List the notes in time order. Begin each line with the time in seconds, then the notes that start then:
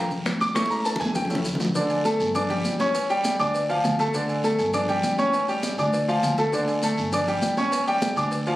Already playing: A#1
0.11 high bongo, high conga, low conga, maracas
0.25 A1, high bongo, low bongo, high conga, high timbale, low timbale, short guiro, maracas
0.40 D6, high conga, high timbale, short guiro, maracas
0.55 A3 C#4 E4 C#6, high bongo, high conga, high timbale, long guiro, maracas
0.66 high conga
0.70 A#5, maracas
0.85 A5, high bongo, high timbale, short guiro, maracas
0.96 low conga
1.00 E2 G#5, high bongo, high timbale, short guiro, maracas
1.05 high conga
1.15 G5, high bongo, low conga, low timbale, long guiro, maracas
1.25 low conga
1.30 A3 C#4 E4, low bongo, low timbale, maracas
1.35 low conga
1.45 D2, low bongo, short guiro, maracas
1.55 low conga
1.60 low bongo, low timbale, short guiro, maracas
1.65 low conga
1.75 D3 D4 D5, cowbell, low agogo, long guiro, maracas
1.90 cowbell, high conga, low agogo, maracas
2.05 A3 A4 A5, cowbell, high conga, low timbale, short guiro, maracas
2.20 G1, high conga, low agogo, short guiro, maracas
2.35 D4 D5 D6, cowbell, high conga, low conga, low agogo, long guiro, maracas
2.50 G3 G4 G5, cowbell, high conga, low conga, low agogo, maracas
2.65 A1, cowbell, high conga, low timbale, short guiro, maracas
2.79 C#4 C#5 C#6, cowbell, high conga, low agogo, short guiro, maracas
2.95 cowbell, high conga, low agogo, long guiro, maracas
3.10 G3 G4 G5, high conga, maracas
3.24 cowbell, high conga, low timbale, low agogo, short guiro, maracas
3.39 D2 D4 D5 D6, high conga, low agogo, short guiro, maracas
3.54 cowbell, high conga, long guiro, maracas
3.69 F3 F4 F5, high conga, low agogo, maracas
3.84 D2, cowbell, high conga, low timbale, low agogo, short guiro, maracas
3.99 A3 A4 A5, cowbell, high conga, short guiro, maracas
4.14 D3 D4 D5, cowbell, high conga, low agogo, long guiro, maracas
4.29 cowbell, high conga, low agogo, maracas
4.44 A3 A4 A5, cowbell, high conga, low timbale, short guiro, maracas
4.59 G1, high conga, low agogo, short guiro, maracas
4.73 D4 D5 D6, cowbell, high conga, low conga, low agogo, long guiro, maracas
4.88 G3 G4 G5, cowbell, high conga, low conga, low agogo, maracas
5.03 A1, cowbell, high conga, low timbale, short guiro, maracas
5.18 C#4 C#5 C#6, cowbell, high conga, low agogo, short guiro, maracas
5.33 cowbell, high conga, high timbale, low agogo, long guiro, maracas
5.48 G3 G4 G5, high conga, maracas
5.63 cowbell, high conga, low agogo, short guiro, maracas
5.78 D2 D4 D5 D6, high conga, low timbale, low agogo, short guiro, maracas
5.93 cowbell, high conga, low timbale, long guiro, maracas
6.08 F3 F4 F5, high conga, low timbale, low agogo, maracas
6.23 D2, cowbell, high conga, low agogo, short guiro, maracas
6.38 A3 A4 A5, cowbell, high conga, low timbale, short guiro, maracas
6.53 D3 D4 D5, cowbell, high conga, low agogo, long guiro, maracas
6.68 cowbell, high conga, low agogo, maracas
6.82 A3 A4 A5, cowbell, high conga, low timbale, short guiro, maracas
6.97 G1, high conga, low agogo, short guiro, maracas
7.12 D4 D5 D6, cowbell, high conga, low conga, low agogo, long guiro, maracas
7.27 G3 G4 G5, cowbell, high conga, low agogo, maracas
7.42 A1, cowbell, high conga, low timbale, short guiro, maracas
7.57 C#4 C#5 C#6, cowbell, high conga, low agogo, short guiro, maracas
7.72 cowbell, high conga, low agogo, long guiro, maracas
7.87 G3 G4 G5, high conga, maracas
8.01 cowbell, high conga, low timbale, low agogo, short guiro, maracas
8.16 D2 D4 D5 D6, high conga, low agogo, short guiro, maracas
8.31 cowbell, high conga, long guiro, maracas
8.46 F3 F4 F5, high conga, low agogo, maracas